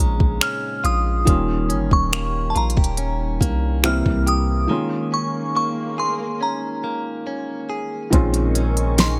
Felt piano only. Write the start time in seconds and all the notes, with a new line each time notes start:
Already playing: C#3 G#3 A#3 C4 D#4
1.25 D#3 G3 A#3 C#4
1.29 F4
3.83 E3 G3 A#3 C4 E4
4.67 D#3 G#3 A#3 C#4
4.72 F4
8.10 D#3 G#3 C4 C#4
8.15 F4